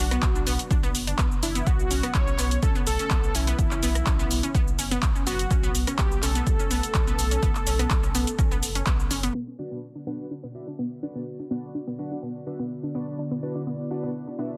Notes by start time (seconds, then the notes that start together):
Already playing: F#4
0.00 B1
0.11 B3, cross-stick, closed hi-hat, cabasa
0.22 B1, kick, clap, closed hi-hat, cabasa
0.35 D4, cabasa
0.47 B1 B3, open hi-hat, cabasa
0.59 closed hi-hat, cabasa
0.71 B1 D4, kick, closed hi-hat, cabasa
0.83 B3, cabasa
0.95 F#1, open hi-hat, cabasa
1.07 D4, closed hi-hat, cabasa
1.18 B1 B3, kick, clap, closed hi-hat, cabasa
1.32 cabasa
1.43 F#1 D4 E4, open hi-hat, cabasa
1.55 B3, closed hi-hat, cabasa
1.67 B1 B3 F#4, kick, closed hi-hat, cabasa
1.80 cabasa
1.91 B1 C#4, open hi-hat, cabasa
2.03 B3, cross-stick, closed hi-hat, cabasa
2.14 B1 C#5, kick, clap, closed hi-hat, cabasa
2.27 C#4, cabasa
2.38 B1 B3, clap, open hi-hat, cabasa
2.51 closed hi-hat, cabasa
2.63 B1 C#4 A4, kick, closed hi-hat, cabasa
2.75 B3, cabasa
2.87 B1 A4, open hi-hat, cabasa
2.99 C#4, closed hi-hat, cabasa
3.10 B1 B3, kick, clap, closed hi-hat, cabasa
3.24 cabasa
3.35 B1 C#4 E4, open hi-hat, cabasa
3.47 B3, closed hi-hat, cabasa
3.59 F#1 E4, kick, closed hi-hat, cabasa
3.71 C#4, clap, cabasa
3.83 B1 B3, open hi-hat, cabasa
3.95 cross-stick, closed hi-hat, cabasa
4.06 B1 C#4, kick, clap, closed hi-hat, cabasa
4.19 B3, cabasa
4.31 B1, open hi-hat, cabasa
4.43 C#4, closed hi-hat, cabasa
4.55 B1 B3, kick, closed hi-hat, cabasa
4.68 cabasa
4.79 F#1 C#4, open hi-hat, cabasa
4.91 B3, closed hi-hat, cabasa
5.02 B1, kick, clap, closed hi-hat, cabasa
5.15 C#4, cabasa
5.27 F#1 B3 F#4, open hi-hat, cabasa
5.39 closed hi-hat, cabasa
5.51 B1 C#4, kick, closed hi-hat, cabasa
5.63 B3, cabasa
5.75 B1, open hi-hat, cabasa
5.87 C#4, cross-stick, closed hi-hat, cabasa
5.98 B1 B3 G4, kick, clap, closed hi-hat, cabasa
6.12 cabasa
6.22 B1 C#4 A4, clap, open hi-hat, cabasa
6.35 B3, closed hi-hat, cabasa
6.47 B1, kick, closed hi-hat, cabasa
6.59 C#4, cabasa
6.71 B1 B3, open hi-hat, cabasa
6.83 closed hi-hat, cabasa
6.94 B1 C#4, kick, clap, closed hi-hat, cabasa
7.07 B3, cabasa
7.19 B1, open hi-hat, cabasa
7.31 C#4, closed hi-hat, cabasa
7.43 F#1 B3, kick, closed hi-hat, cabasa
7.55 clap, cabasa
7.67 B1 C#4, open hi-hat, cabasa
7.79 B3, cross-stick, closed hi-hat, cabasa
7.90 B1, kick, clap, closed hi-hat, cabasa
8.03 C#4, cabasa
8.15 B1 B3, open hi-hat, cabasa
8.27 closed hi-hat, cabasa
8.39 B1 C#4, kick, cross-stick, closed hi-hat, cabasa
8.51 B3, cabasa
8.63 F#1, open hi-hat, cabasa
8.75 C#4, closed hi-hat, cabasa
8.86 B1 B3, kick, clap, closed hi-hat, cabasa
9.00 cabasa
9.11 F#1 C#4, open hi-hat, cabasa
9.23 B3, closed hi-hat, cabasa
9.35 D3 B3 F#4 D5
9.48 cabasa
9.59 D4 F#4 B4 D5
9.71 B3
9.95 D4
10.07 B3 D4 F#4 B4 F#5
10.31 D4, cabasa
10.43 B3
10.55 D4 F#4 B4 E5, cabasa
10.67 D4
10.79 B3, cabasa
10.92 cabasa
11.03 D4 F#4 B4 D5, cabasa
11.15 B3, cabasa
11.39 D4, cabasa
11.51 B3 D4 F#4 B4 D5, cabasa
11.64 cabasa
11.75 D4, cabasa
11.87 B3, cabasa
11.99 D4 F#4 B4 F#5, cabasa
12.11 D4, cabasa
12.23 B3, cabasa
12.36 cabasa
12.47 D4 F#4 B4 E5, cabasa
12.59 B3, cabasa
12.71 cabasa
12.83 D4, cabasa
12.95 B3 D4 F#4 B4 D5, cabasa
13.08 cabasa
13.19 D4 E4, cabasa
13.31 B3, cabasa
13.43 D4 F#4 B4 D5, cabasa
13.55 D4, cabasa
13.67 B3, cabasa
13.80 cabasa
13.91 D4 F#4 B4 F#5, cabasa
14.03 B3, cabasa
14.15 cabasa
14.27 D4, cabasa
14.39 B3 D4 F#4 B4 E5, cabasa
14.52 cabasa